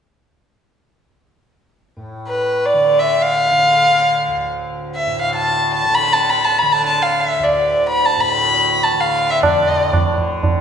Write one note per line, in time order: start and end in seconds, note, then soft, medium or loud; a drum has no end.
1.97 5.06 A2 soft
2.28 2.67 B4 medium
2.65 3.01 D5 medium
2.73 3.51 D3 soft
2.99 3.24 E5 medium
3.22 4.48 F5 medium
3.51 5.83 D3 soft
4.28 7.38 D2 soft
4.95 5.19 E5 medium
5.07 8.16 A2 medium
5.22 5.34 F5 medium
5.35 5.72 A5 medium
5.74 5.96 A5 medium
5.83 6.62 D3 medium
5.95 6.14 B5 loud
6.13 6.31 A5 medium
6.30 6.46 B5 medium
6.44 6.60 A5 medium
6.58 8.93 D3 medium
6.58 6.74 B5 medium
6.72 6.86 A5 medium
6.86 7.04 A5 medium
7.02 7.21 F5 medium
7.20 7.44 E5 medium
7.39 10.61 D2 medium
7.43 7.88 D5 medium
7.89 8.07 B5 medium
8.05 8.22 A5 medium
8.17 9.43 A2 medium
8.17 8.85 B5 medium
8.83 9.01 A5 medium
8.93 10.06 D3 medium
9.00 9.31 F5 medium
9.30 9.43 E5 medium
9.43 10.61 A2 medium
9.43 10.15 D5 medium
9.43 tabla na medium
9.43 tabla ge medium
9.93 tabla na medium
9.93 tabla ge medium
10.06 10.61 D3 medium
10.18 tabla ge soft
10.43 tabla tin medium
10.43 tabla ge medium